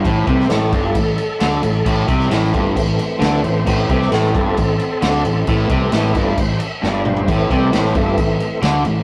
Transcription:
<<
  \new Staff \with { instrumentName = "Tonewheel organ" } { \time 4/4 \key a \minor \tempo 4 = 133 c''4 a'8 a'2~ a'8~ | a'8 r2 r8 d''8 c''8~ | c''4 a'8 <c' a'>2~ <c' a'>8~ | <c' a'>8 r8 e''8 d''8 c''8 <dis'' e''>8 d''8 c''8 |
e''8 d''8 c''8 e''2 r8 | }
  \new Staff \with { instrumentName = "Tonewheel organ" } { \time 4/4 \key a \minor r8 <e a c'>8 r2. | r4. <e a c'>2~ <e a c'>8 | <e a c'>4. r2 r8 | <e a c'>4. <e a c'>8 r2 |
<e a c'>2~ <e a c'>8 <e a c'>8 r4 | }
  \new Staff \with { instrumentName = "Overdriven electric guitar" } { \clef bass \time 4/4 \key a \minor a,8 c8 a,8 g,8 a,8 r8 d8 a,8 | a,8 c8 a,8 g,8 a,8 r8 d8 a,8 | a,8 c8 a,8 g,8 a,8 r8 d8 a,8 | a,8 c8 a,8 g,8 a,8 r8 g,4 |
a,8 c8 a,8 g,8 a,8 r8 d8 a,8 | }
  \new Staff \with { instrumentName = "Fingered electric bass" } { \clef bass \time 4/4 \key a \minor a,,8 c,8 a,,8 g,,8 a,,8 r8 d,8 a,,8 | a,,8 c,8 a,,8 g,,8 a,,8 r8 d,8 a,,8 | a,,8 c,8 a,,8 g,,8 a,,8 r8 d,8 a,,8 | a,,8 c,8 a,,8 g,,8 a,,8 r8 g,,4 |
a,,8 c,8 a,,8 g,,8 a,,8 r8 d,8 a,,8 | }
  \new DrumStaff \with { instrumentName = "Drums" } \drummode { \time 4/4 <cymc bd>8 <cymc bd>16 sn16 <cymc sn>8 <cymc bd>8 <cymc bd>8 cymc8 <cymc sn>8 cymc8 | <cymc bd>8 <cymc bd>16 sn16 <cymc sn>16 sn16 <cymc bd>8 <cymc bd>8 cymc8 <cymc sn>8 cymc8 | <cymc bd>8 <cymc bd>16 sn16 <cymc sn>16 sn16 <cymc bd>8 <cymc bd>8 cymc8 <cymc sn>8 cymc8 | <cymc bd>8 <cymc bd>8 <cymc sn>16 sn16 <cymc bd>8 <cymc bd>8 cymc8 sn8 toml16 tomfh16 |
<cymc bd>8 <cymc bd>8 <cymc sn>16 sn16 <cymc bd>8 <cymc bd>8 cymc8 <cymc sn>8 cymc8 | }
>>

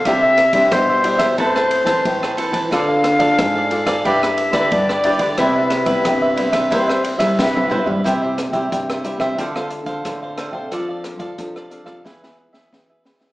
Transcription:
<<
  \new Staff \with { instrumentName = "Cavaquinho" } { \time 4/4 \key c \major \tempo 4 = 90 <d' g' c'' e''>16 <g' c'' e''>16 r16 <g' c'' e''>8 <g' c'' e''>16 <d' g' c'' e''>16 <g' c'' e''>16 <a' b' c'' a''>16 <b' c'' a''>16 r16 <c'' a''>8 <b' c'' a''>16 <a' b' c'' a''>16 <b' c'' a''>16 | <d' a' d'' f''>16 <a' d'' f''>16 r16 <a' d'' f''>8 <a' d'' f''>16 <d' a' d'' f''>16 <a' d'' f''>16 <e' g' b' d''>16 <g' b' d''>16 r16 <g' b' d''>8 <g' b' d''>16 <e' g' b' d''>16 <g' b' d''>16 | <e' b' c'' e''>16 <b' c'' e''>16 r16 <b' e''>8 <b' c'' e''>16 <e' b' c'' e''>16 <b' c'' e''>16 <e' b' c'' e''>16 <b' c'' e''>16 r16 <b' c'' e''>8 <b' c'' e''>16 <e' b' c'' e''>16 <b' c'' e''>16 | <e' g' c'' e''>16 <g' c'' e''>16 r16 <g' c'' e''>8 <g' c'' e''>16 <e' g' c'' e''>16 <g' c'' e''>16 <d' a' c'' f''>16 <a' c'' f''>16 r16 <a' c'' f''>8 <a' c'' f''>16 <d' a' c'' f''>16 <a' c'' f''>16 |
<d' a' d'' f''>16 <a' d'' f''>16 r16 <a' d'' f''>8 <a' d'' f''>16 <d' a' d'' f''>16 <a' d'' f''>16 <e' gis' b' e''>16 <gis' b' e''>16 r16 <gis' b' e''>8 <gis' b' e''>16 <e' gis' b' e''>16 <gis' b' e''>16 | }
  \new Staff \with { instrumentName = "Flute" } { \time 4/4 \key c \major e''4 c''4 c''4. r8 | f''2 e''4 d''4 | b'2 c''8 r8 b'4 | r1 |
r1 | }
  \new Staff \with { instrumentName = "Nylon-string guitar" } { \time 4/4 \key c \major << { <g d' e'>8 r16 <g d' e'>8. <g d' e'>8 <c' e'>8. <c' e'>8. <c' e' b'>8 | <d' f' a'>8. <d' f' a'>8. <d' f' a'>8 <d' e' b'>8. <d' e' b'>8. <d' e' b'>8 | <g b e'>8. <g b e'>8. <g b e'>16 r16 <g e'>8 r16 <g e'>8. <g b e'>16 r16 | <g c' e'>8 r16 <g c' e'>8. <g c' e'>8 <c' f' a'>16 <c' f' a'>8. <c' f' a'>8. <c' d' a'>16~ |
<c' d' a'>8. r16 <c' d' a'>8 <c' d' a'>8 <b e' gis'>16 <b e' gis'>4 <b e' gis'>8 <b e' gis'>16 | } \\ { c4 g4 a4 e4 | d4 r4 g4 d4 | c4 g,4 c4 g,4 | c4 g,4 d4 a,4 |
f4 c4 e4 b,4 | } >> }
  \new Staff \with { instrumentName = "Nylon-string guitar" } { \clef bass \time 4/4 \key c \major c4 b,4 a,8. e16 a,8 r16 e16 | d4 aes,4 g,8. d16 g,8 r16 d16 | c4 c4 c'8. g16 c8 r16 g16 | c8. c16 c8. c16 d8. d16 d8. c16 |
f8. f16 f8. f16 e8. e16 e8. e16 | }
  \new DrumStaff \with { instrumentName = "Drums" } \drummode { \time 4/4 <bd cymr ss>8 <cymr ss>16 <bd cymr>16 <bd cymr ss>8 cymr16 <bd cymr ss>16 <bd cymr>16 ss16 cymr16 <bd cymr ss>16 <bd cymr>16 ss16 cymr16 <bd cymr>16 | <bd cymr ss>8 <cymr ss>16 <bd cymr>16 <bd cymr ss>8 cymr16 <bd cymr ss>16 <bd cymr>16 ss16 cymr16 <bd cymr ss>16 <bd cymr>16 ss16 cymr16 <bd cymr>16 | <bd cymr ss>8 <cymr ss>16 <bd cymr>16 <bd cymr ss>8 cymr16 <bd cymr ss>16 <bd cymr>16 ss16 cymr16 <bd cymr ss>16 <bd sn>16 tommh16 toml16 tomfh16 | <hh bd ss>8 <hh ss>16 <hh bd>16 <hh bd>16 <hh ss>16 hh16 <bd ss>16 <hh bd>16 ss16 hh16 <hh bd>16 <hh bd ss>8 <hh ss>16 bd16 |
<hh bd ss>8 <hh ss>16 <hh bd>16 <hh bd>16 ss16 hh16 <bd ss>16 <bd sn>16 sn8 sn16 <bd sn>8 sn16 sn16 | }
>>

